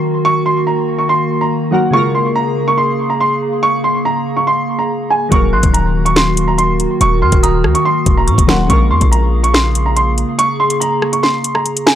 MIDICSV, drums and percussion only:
0, 0, Header, 1, 2, 480
1, 0, Start_track
1, 0, Key_signature, -5, "minor"
1, 0, Tempo, 422535
1, 281, Time_signature, 4, 2, 24, 8
1, 13577, End_track
2, 0, Start_track
2, 0, Title_t, "Drums"
2, 6041, Note_on_c, 9, 36, 114
2, 6041, Note_on_c, 9, 42, 87
2, 6155, Note_off_c, 9, 36, 0
2, 6155, Note_off_c, 9, 42, 0
2, 6396, Note_on_c, 9, 42, 86
2, 6400, Note_on_c, 9, 36, 91
2, 6510, Note_off_c, 9, 42, 0
2, 6514, Note_off_c, 9, 36, 0
2, 6525, Note_on_c, 9, 42, 93
2, 6639, Note_off_c, 9, 42, 0
2, 6884, Note_on_c, 9, 42, 68
2, 6998, Note_off_c, 9, 42, 0
2, 7000, Note_on_c, 9, 38, 105
2, 7003, Note_on_c, 9, 26, 85
2, 7114, Note_off_c, 9, 38, 0
2, 7116, Note_off_c, 9, 26, 0
2, 7238, Note_on_c, 9, 42, 88
2, 7352, Note_off_c, 9, 42, 0
2, 7481, Note_on_c, 9, 42, 80
2, 7595, Note_off_c, 9, 42, 0
2, 7721, Note_on_c, 9, 42, 73
2, 7835, Note_off_c, 9, 42, 0
2, 7961, Note_on_c, 9, 42, 89
2, 8074, Note_off_c, 9, 42, 0
2, 8317, Note_on_c, 9, 42, 86
2, 8321, Note_on_c, 9, 36, 90
2, 8430, Note_off_c, 9, 42, 0
2, 8434, Note_off_c, 9, 36, 0
2, 8446, Note_on_c, 9, 42, 96
2, 8560, Note_off_c, 9, 42, 0
2, 8682, Note_on_c, 9, 37, 93
2, 8795, Note_off_c, 9, 37, 0
2, 8804, Note_on_c, 9, 42, 68
2, 8917, Note_off_c, 9, 42, 0
2, 9159, Note_on_c, 9, 42, 90
2, 9160, Note_on_c, 9, 36, 88
2, 9272, Note_off_c, 9, 42, 0
2, 9273, Note_off_c, 9, 36, 0
2, 9401, Note_on_c, 9, 42, 73
2, 9515, Note_off_c, 9, 42, 0
2, 9520, Note_on_c, 9, 36, 96
2, 9526, Note_on_c, 9, 42, 86
2, 9634, Note_off_c, 9, 36, 0
2, 9640, Note_off_c, 9, 42, 0
2, 9640, Note_on_c, 9, 38, 118
2, 9643, Note_on_c, 9, 26, 93
2, 9754, Note_off_c, 9, 38, 0
2, 9756, Note_off_c, 9, 26, 0
2, 9880, Note_on_c, 9, 36, 120
2, 9880, Note_on_c, 9, 42, 88
2, 9994, Note_off_c, 9, 36, 0
2, 9994, Note_off_c, 9, 42, 0
2, 10236, Note_on_c, 9, 42, 85
2, 10240, Note_on_c, 9, 36, 89
2, 10350, Note_off_c, 9, 42, 0
2, 10354, Note_off_c, 9, 36, 0
2, 10367, Note_on_c, 9, 42, 93
2, 10480, Note_off_c, 9, 42, 0
2, 10724, Note_on_c, 9, 42, 69
2, 10837, Note_off_c, 9, 42, 0
2, 10841, Note_on_c, 9, 38, 106
2, 10843, Note_on_c, 9, 26, 84
2, 10954, Note_off_c, 9, 38, 0
2, 10957, Note_off_c, 9, 26, 0
2, 11078, Note_on_c, 9, 42, 93
2, 11192, Note_off_c, 9, 42, 0
2, 11321, Note_on_c, 9, 42, 84
2, 11435, Note_off_c, 9, 42, 0
2, 11562, Note_on_c, 9, 42, 74
2, 11675, Note_off_c, 9, 42, 0
2, 11801, Note_on_c, 9, 42, 89
2, 11915, Note_off_c, 9, 42, 0
2, 12156, Note_on_c, 9, 42, 86
2, 12270, Note_off_c, 9, 42, 0
2, 12286, Note_on_c, 9, 42, 93
2, 12400, Note_off_c, 9, 42, 0
2, 12521, Note_on_c, 9, 37, 91
2, 12635, Note_off_c, 9, 37, 0
2, 12643, Note_on_c, 9, 42, 68
2, 12757, Note_off_c, 9, 42, 0
2, 12761, Note_on_c, 9, 38, 64
2, 12875, Note_off_c, 9, 38, 0
2, 12999, Note_on_c, 9, 42, 91
2, 13113, Note_off_c, 9, 42, 0
2, 13120, Note_on_c, 9, 37, 77
2, 13234, Note_off_c, 9, 37, 0
2, 13241, Note_on_c, 9, 42, 73
2, 13355, Note_off_c, 9, 42, 0
2, 13366, Note_on_c, 9, 42, 85
2, 13480, Note_off_c, 9, 42, 0
2, 13481, Note_on_c, 9, 38, 115
2, 13484, Note_on_c, 9, 26, 95
2, 13577, Note_off_c, 9, 26, 0
2, 13577, Note_off_c, 9, 38, 0
2, 13577, End_track
0, 0, End_of_file